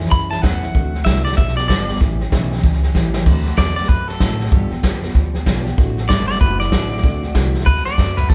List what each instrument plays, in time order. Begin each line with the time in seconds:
Already playing: upright bass F2
0.00 steel-string acoustic guitar G3 C#4 E4, snare
0.06 snare
0.11 upright bass F#2, steel-string acoustic guitar E3 G3 C#4 E4, clean electric guitar B5, kick, snare
0.30 steel-string acoustic guitar G3 C#4 E4, clean electric guitar A5, snare
0.42 upright bass E2, steel-string acoustic guitar A2 E3 G3 C#4 E4, clean electric guitar F#5, kick, snare, hi-hat pedal
0.62 steel-string acoustic guitar G3 C#4 E4, snare
0.75 upright bass D2, steel-string acoustic guitar D3 A3 C4 F#4, kick, snare
0.94 steel-string acoustic guitar A3 C4 F#4, snare
1.05 upright bass C2, steel-string acoustic guitar D3 A3 C4 F#4, clean electric guitar E5, kick, snare, hi-hat pedal
1.25 steel-string acoustic guitar C4 F#4, clean electric guitar D5, snare
1.29 steel-string acoustic guitar A3, snare
1.37 upright bass B1, steel-string acoustic guitar F3 G3 B3 G4, clean electric guitar E5, kick, snare
1.48 snare
1.56 steel-string acoustic guitar F3 G3 B3 G4, clean electric guitar D5, snare
1.68 upright bass G1, steel-string acoustic guitar G2 D3 F3 G3 B3 G4, clean electric guitar D5, kick, snare, hi-hat pedal
1.88 steel-string acoustic guitar F3 G3 B3 G4, snare
1.95 snare
2.00 upright bass A1, steel-string acoustic guitar A2 E3 G3 C#4 G4, kick, snare
2.20 steel-string acoustic guitar G3 C#4 G4, snare
2.32 upright bass B1, steel-string acoustic guitar A2 E3 G3 C#4 G4, kick, snare, hi-hat pedal
2.51 steel-string acoustic guitar G3 C#4 G4, snare
2.58 snare
2.62 upright bass C#2, steel-string acoustic guitar E3 G3 C#4 G4, kick, snare
2.74 snare
2.83 steel-string acoustic guitar G3 C#4 G4, snare
2.94 upright bass A1, steel-string acoustic guitar A2 E3 G3 C#4 G4, kick, snare, hi-hat pedal
3.14 steel-string acoustic guitar G3 C#4 G4, snare
3.26 upright bass D2, steel-string acoustic guitar D3 A3 C4 F#4, kick, snare, crash
3.45 steel-string acoustic guitar A3 C4 F#4, snare
3.57 upright bass E2, steel-string acoustic guitar D3 A3 C4 F#4, clean electric guitar D5, kick, snare, hi-hat pedal
3.76 steel-string acoustic guitar A3 C4 F#4, clean electric guitar D5, snare
3.83 snare
3.88 upright bass F#2, steel-string acoustic guitar D3 A3 C4 F#4, clean electric guitar B4, kick, snare
4.07 steel-string acoustic guitar A3 C4 F#4, clean electric guitar A4, snare
4.19 upright bass A2, steel-string acoustic guitar D3 A3 C4 F#4, kick, snare, hi-hat pedal
4.39 steel-string acoustic guitar A3 C4 F#4, snare
4.46 snare
4.51 steel-string acoustic guitar G2 D3 F3 G3 B3 G4, upright bass G2, kick, snare
4.70 steel-string acoustic guitar F3 G3 B3 G4, muted upright bass stroke, snare
4.83 upright bass F2, steel-string acoustic guitar G2 D3 F3 G3 B3 G4, kick, snare, hi-hat pedal
5.02 steel-string acoustic guitar F3 G3 B3 G4, snare
5.09 snare
5.14 upright bass D2, steel-string acoustic guitar F3 G3 B3 G4, kick, snare
5.34 steel-string acoustic guitar F3 G3 B3 G4, snare
5.46 upright bass B1, steel-string acoustic guitar G2 D3 F3 G3 B3 G4, kick, snare, hi-hat pedal
5.65 steel-string acoustic guitar F3 G3 B3 G4, snare
5.77 upright bass A1, steel-string acoustic guitar D3 A3 C4 F#4, kick, snare
5.97 steel-string acoustic guitar A3 C4 F#4, snare
6.09 upright bass G1, steel-string acoustic guitar D3 A3 C4, clean electric guitar D5, kick, snare, hi-hat pedal
6.28 steel-string acoustic guitar A3 C4 F#4, clean electric guitar D5, snare
6.35 snare
6.40 upright bass F#1, steel-string acoustic guitar D3 A3 C4 F#4, clean electric guitar B4, kick, snare
6.60 steel-string acoustic guitar A3 C4 F#4, clean electric guitar D5, snare
6.72 upright bass A1, steel-string acoustic guitar D3 A3 C4 F#4, kick, snare, hi-hat pedal
6.91 steel-string acoustic guitar A3 C4 F#4, snare
6.97 snare
7.03 upright bass D2, steel-string acoustic guitar D3 A3 C4 F#4, kick, snare
7.23 steel-string acoustic guitar A3 C4 F#4, snare
7.35 upright bass C2, steel-string acoustic guitar D3 A3 C4 F#4, kick, snare, hi-hat pedal
7.54 steel-string acoustic guitar A3 C4 F#4, snare
7.60 snare
7.66 upright bass D2, steel-string acoustic guitar D3 A3 C4 F#4, clean electric guitar B4, kick, snare
7.76 snare
7.85 steel-string acoustic guitar A3 C4 F#4, clean electric guitar D5, muted upright bass stroke, snare
7.97 upright bass F#2, steel-string acoustic guitar D3 A3 C4 F#4, kick, snare, hi-hat pedal
8.17 steel-string acoustic guitar A3 C4 F#4, clean electric guitar B4, floor tom
8.29 steel-string acoustic guitar G2 D3 F3 G3 B3 G4, upright bass G2, clean electric guitar A4, kick, snare, splash